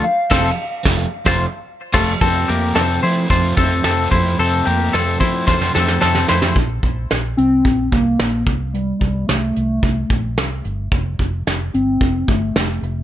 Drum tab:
CC |--x-----------x-|----------------|----------------|----------------|
HH |----------------|x-x-x-x-x-x-x-x-|x-x-x-x---------|x-x-x-x-x-x-x-x-|
SD |--o---o--o----o-|----o-----o-o---|----o---oooooooo|----o-----o-o---|
BD |--o---o--o----o-|o-------o-o---o-|------o-o-------|o-o-----o-o---o-|

CC |----------------|----------------|
HH |x-x-x-x-x-x-x-x-|x-x-x-x-x-x-x-x-|
SD |----o-------o---|----o-------o---|
BD |--o-----o-o-----|o-o-----o-o-----|